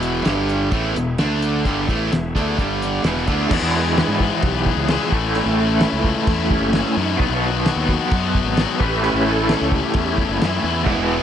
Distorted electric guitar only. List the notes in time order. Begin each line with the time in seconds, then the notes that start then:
Already playing: E2 B2 E3
0.26 G2 D3 G3
0.73 A2 E3 A3
0.95 E2 B2
1.18 D3 A3 D4
1.66 G2 D3 G3
1.88 A2 E3 A3
2.13 E2 B2
2.36 D3 A3 D4
2.58 G2 D3 G3
3.05 E2 B2 E3
3.28 D3 A3 D4
3.52 E3 G#3 B3 E4
3.75 G#3 B3 E4
3.96 E3 G#3 B3 E4
4.19 G#3 B3 E4
4.89 E3 G#3 B3 E4
5.13 A2 E3 A3 C#4 E4
5.37 A2 E3 A3 C#4 E4
5.60 A3 C#4 E4
5.82 A2 E3 A3 C#4 E4
6.06 A3 C#4 E4
6.74 E3 A3 C#4 E4
6.98 A3 C#4 E4
7.21 B2 D#3 F#3 B3 F#4
7.43 F#3 B3 F#4
7.66 B2 D#3 F#3 B3 F#4
7.88 F#3 B3 F#4
8.58 D#3 F#3 B3 F#4
8.81 A2 E3 A3 C#4 E4
9.03 A2 E3 A3 C#4 E4
9.27 A3 C#4 E4
9.49 A2 E3 A3 C#4 E4
9.74 A3 C#4 E4
10.43 E3 A3 C#4 E4
10.65 A3 C#4 E4
10.87 E3 G#3 B3 E4
11.09 G#3 B3 E4